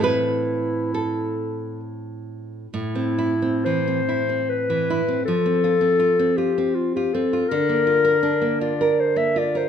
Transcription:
<<
  \new Staff \with { instrumentName = "Clarinet" } { \time 3/4 \key a \minor \tempo 4 = 78 e'2~ e'8 r8 | e'4 c''4 b'4 | a'4. g'8 f'16 g'16 a'8 | bes'4. d''8 c''16 e''16 d''16 c''16 | }
  \new Staff \with { instrumentName = "Nylon-string guitar" } { \time 3/4 \key a \minor << { b'4 a'4 r4 | r2. | r2. | r2. | } \\ { <a, c' e'>2. | a,16 c'16 e'16 c'16 e16 c'16 e'16 c'8 e16 e'16 c'16 | f16 c'16 f'16 c'16 f'16 c'16 f'16 c'8 f'16 c'16 f'16 | d16 bes16 f'16 bes'16 d'16 bes16 f'16 bes'8 bes16 f'16 bes'16 | } >> }
>>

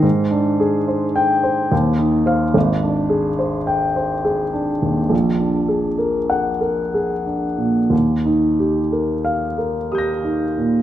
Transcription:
\new Staff \with { instrumentName = "Grand piano" } { \time 3/4 \key ees \major \tempo 4 = 68 << { r4 \tuplet 3/2 { r8 g''4 r4 f''8 } | r4 \tuplet 3/2 { r8 g''4 } r4 | r4 \tuplet 3/2 { r8 fis''4 } r4 | r4 \tuplet 3/2 { r8 f''4 } <ees''' g''' bes'''>4 | } \\ { \tuplet 3/2 { aes,8 d'8 aes'8 c''4 c''8 ees,8 ees'8 c''8 } | \tuplet 3/2 { aes,,8 d'8 aes'8 c''4 c''8 aes'8 d'8 ees,8 } | \tuplet 3/2 { bes,,8 d'8 aes'8 bes'4 bes'8 aes'8 d'8 bes,8 } | \tuplet 3/2 { ees,8 ees'8 g'8 bes'4 bes'8 g'8 ees'8 bes,8 } | } >> }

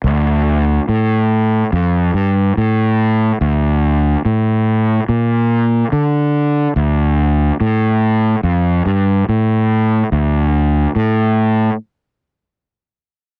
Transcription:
\new Staff \with { instrumentName = "Fingered electric bass" } { \clef bass \time 4/4 \key d \minor \tempo 4 = 72 d,4 a,4 f,8 g,8 a,4 | d,4 a,4 bes,4 d4 | d,4 a,4 f,8 g,8 a,4 | d,4 a,4 r2 | }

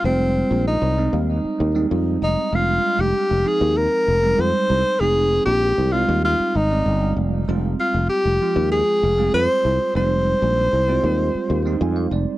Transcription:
<<
  \new Staff \with { instrumentName = "Tenor saxophone" } { \time 4/4 \key f \dorian \tempo 4 = 97 c'4 ees'4 r4. ees'8 | f'8. g'8. aes'8 bes'4 c''4 | aes'8. g'8. f'8 f'8 ees'4 r8 | r8 f'8 g'4 aes'4 c''4 |
c''2.~ c''8 r8 | }
  \new Staff \with { instrumentName = "Tine electric piano" } { \time 4/4 \key f \dorian r1 | r1 | r1 | r1 |
r2. aes''16 f''16 d''8 | }
  \new Staff \with { instrumentName = "Tine electric piano" } { \time 4/4 \key f \dorian <g aes c' f'>4. <g aes c' ees'>4~ <g aes c' ees'>16 <g aes c' ees'>4~ <g aes c' ees'>16 | <g aes c' d'>4. <f aes c' ees'>4~ <f aes c' ees'>16 <g aes c' ees'>4~ <g aes c' ees'>16 | <f aes c' ees'>4. <g aes c' ees'>4~ <g aes c' ees'>16 <g aes c' d''>4~ <g aes c' d''>16 | <g aes c' f'>4. <f aes c' f'>4~ <f aes c' f'>16 <g aes c' f'>4~ <g aes c' f'>16 |
<g aes c' ees'>4. <g aes c' f'>4~ <g aes c' f'>16 <g aes c' ees'>4~ <g aes c' ees'>16 | }
  \new Staff \with { instrumentName = "Fretless electric bass" } { \clef bass \time 4/4 \key f \dorian f,,8. bes,,8 c,8 ees,8 r16 ees,8 f,8 f,,16 r16 | f,,8 r16 f,,16 r16 f,,16 r16 ees,8 r16 f,,8 f,16 r16 c,16 r16 | f,,8. bes,,8 c,8 ees,8 r16 aes,,8 g,,8 f,,8 | f,,8 r16 f,,16 r16 f,,16 r16 ees,8 r16 f,,8 f,16 r16 c,16 r16 |
f,,8. bes,,8 c,8 ees,8 r16 ees,8 f,8 f,,16 r16 | }
>>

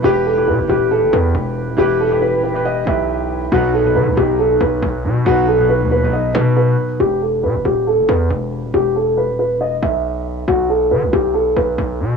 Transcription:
<<
  \new Staff \with { instrumentName = "Grand piano" } { \time 4/4 \key b \phrygian \tempo 4 = 138 g'8 a'8 b'8 g'8 a'8 b'4. | g'8 a'8 b'8 b'8 dis''8 e''4. | fis'8 a'8 b'8 g'8 a'8 b'4. | fis'8 a'8 b'8 b'8 dis''8 b'8 b'4 |
g'8 a'8 b'8 g'8 a'8 b'4. | g'8 a'8 b'8 b'8 dis''8 e''4. | fis'8 a'8 b'8 g'8 a'8 b'4. | }
  \new Staff \with { instrumentName = "Grand piano" } { \time 4/4 \key b \phrygian <e e' g' b'>8 r16 <e e' g' b'>8 r16 <e e' g' b'>4. r4 | <e e' g' b'>8 r16 <e e' g' b'>8. r16 <e e' g' b'>8 r16 <e e' g' b'>4~ <e e' g' b'>16 r16 | <b, fis dis' b'>8 r16 <b, fis dis' b'>8 r16 <b, fis dis' b'>4. r4 | <b, fis dis' b'>8 r16 <b, fis dis' b'>8. r16 <b, fis dis' b'>8 r16 <b, fis dis' b'>4~ <b, fis dis' b'>16 r16 |
r1 | r1 | r1 | }
  \new Staff \with { instrumentName = "808-style bass" } { \clef bass \time 4/4 \key b \phrygian e,,4 b,16 e,,16 dis,,8. g,,16 e,8 e,,8. dis,,16 | e,,4~ e,,16 dis,,8~ dis,,32 e,,8~ e,,32 b,,4. | b,,4 dis16 b,,16 b,,4 b,,8 b,,8 b,8 | b,,4~ b,,16 dis,8~ dis,32 b,,8~ b,,32 b,4 r8 |
e,,4 b,16 e,,16 dis,,8. g,,16 e,8 e,,8. dis,,16 | e,,4~ e,,16 dis,,8~ dis,,32 e,,8~ e,,32 b,,4. | b,,4 dis16 b,,16 b,,4 b,,8 b,,8 b,8 | }
>>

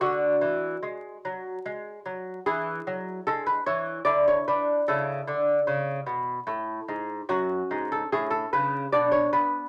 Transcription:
<<
  \new Staff \with { instrumentName = "Lute" } { \time 3/4 \key a \major \tempo 4 = 74 << { fis'2. | gis'4 a'16 b'16 cis''8 d''16 cis''16 b'8 | a'2. | fis'8. a'16 gis'16 a'16 b'8 d''16 cis''16 b'8 | } \\ { r2. | e'2 e'4 | e'2. | cis'2 d'4 | } >> }
  \new Staff \with { instrumentName = "Lute" } { \clef bass \time 3/4 \key a \major d8 e8 gis8 fis8 gis8 fis8 | e8 fis8 gis8 e8 d8 d'8 | cis8 d8 cis8 b,8 a,8 gis,8 | fis,8 gis,8 a,8 cis8 b,8 b8 | }
>>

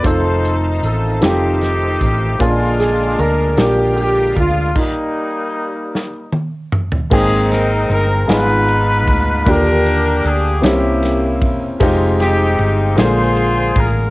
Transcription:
<<
  \new Staff \with { instrumentName = "Grand piano" } { \time 6/8 \key ees \major \tempo 4. = 51 c''4. g'4. | f'8 aes'8 bes'8 g'8 g'8 f'8 | ees'2 r4 | r2. |
r2. | r2. | }
  \new Staff \with { instrumentName = "Horn section" } { \time 6/8 \key ees \major << { c''8 r8 a'8 g'4. | f'4 bes'8 g'8 g'8 f'8 | ees'2 r4 | aes'8 bes'8 bes'8 ces''4. |
bes'4 aes'8 g'4 r8 | r8 g'4 c''4 bes'8 | } \\ { <ees' a'>4. <c' ees'>4. | <aes d'>4. r4. | <g bes>2 r4 | <c' ees'>4. <ees' f'>4. |
<d' g'>4. <bes e'>4. | r8 <c' ees'>4 <f' aes'>4. | } >> }
  \new Staff \with { instrumentName = "Upright piano" } { \time 6/8 \key ees \major <c' ees' f' a'>4 r8 <c' ees' f' a'>4 r8 | <bes des' d' f' aes'>4 r8 <bes d' f' bes'>4 r8 | r2. | <bes c' ees' aes' g''>4 r8 <aes ces' ees' f' aes'>4 r8 |
<bes d' f' g'>4 r8 <bes c' des' e' g'>4 r8 | <aes c' ees' f' g'>4 r8 <aes bes d' f' aes'>4 r8 | }
  \new Staff \with { instrumentName = "Upright piano" } { \clef bass \time 6/8 \key ees \major r2. | bes,4. r4. | r2. | aes4. aes,4. |
d4. c4. | r4. d4. | }
  \new Staff \with { instrumentName = "Tonewheel organ" } { \time 6/8 \key ees \major <ees a c' f'>2. | <d aes bes f'>2. | r2. | r2. |
r2. | r2. | }
  \new Staff \with { instrumentName = "Fingered electric bass" } { \clef bass \time 6/8 \key ees \major f,,4 a,,8 f,,4 a,,8 | bes,,4 d,8 bes,,4 d,8 | r2. | aes,,4 g,,8 aes,,4 d,8 |
ees,4 d,8 c,4 e,,8 | f,,4 g,,8 bes,,4 a,,8 | }
  \new DrumStaff \with { instrumentName = "Drums" } \drummode { \time 6/8 <hh bd>8 hh8 hh8 <hh sn>8 <hh sn>8 <hh bd>8 | <hh bd>8 <hh sn>8 hh8 <hh sn>8 hh8 <hh bd>8 | <cymc bd>4. sn8 tommh8 toml16 tomfh16 | <cymc bd>8 <cymr sn>8 cymr8 <cymr sn>8 cymr8 <bd cymr>8 |
<bd cymr>8 cymr8 cymr8 <cymr sn>8 <cymr sn>8 <bd cymr>8 | <bd cymr>8 <cymr sn>8 cymr8 <cymr sn>8 cymr8 <bd cymr>8 | }
>>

